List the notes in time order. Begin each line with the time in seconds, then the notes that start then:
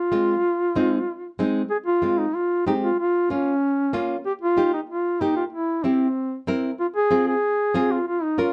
Already playing: F4
0.12 G#3 C4 F4
0.76 G#3 C4 D#4
1.39 G#3 C4 D#4
1.70 G#4
1.86 F4
2.02 G#3 C4 F4
2.19 D#4
2.35 F4
2.67 G#3 C4 D#4 G4
2.83 F4
3.00 F4
3.30 A#3 C#4 F4
3.93 A#3 C#4 F4
4.26 G4
4.42 F4
4.57 A#3 D#4 G4
4.73 D#4
4.90 F4
5.21 A#3 D#4 G4
5.36 F4
5.53 E4
5.84 C4 E4 G4
6.47 C4 E4 A#4
6.80 F4
6.96 G#4
7.11 C4 F4 G#4
7.28 G#4
7.74 C4 F4 G#4
7.91 F4
8.08 F4
8.23 D#4
8.38 C#4 F4 A#4